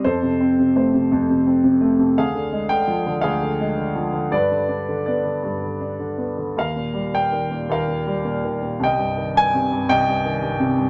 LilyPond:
<<
  \new Staff \with { instrumentName = "Grand piano" } { \time 3/4 \key c \minor \tempo 4 = 82 << { c''4 c''4 r4 | f''8. g''8. f''4. | d''4 d''4 r4 | f''8. g''8. f''4. |
g''8. aes''8. g''4. | } \\ { a'4. r4. | aes'4. aes'4. | b'4. r4. | bes'4. bes'4. |
ees''4. ees''4. | } >> }
  \new Staff \with { instrumentName = "Grand piano" } { \clef bass \time 3/4 \key c \minor f,16 c16 c'16 c16 a16 c16 f,16 c16 c'16 c16 a16 c16 | d,16 d16 aes16 d16 f16 d16 d,16 d16 aes16 d16 f16 d16 | g,16 d16 d'16 d16 b16 d16 g,16 d16 d'16 d16 b16 d16 | ees,16 bes,16 g16 bes,16 ees16 bes,16 ees,16 bes,16 g16 bes,16 ees16 bes,16 |
c,16 g,16 ees16 g,16 c16 g,16 c,16 g,16 ees16 g,16 c16 g,16 | }
>>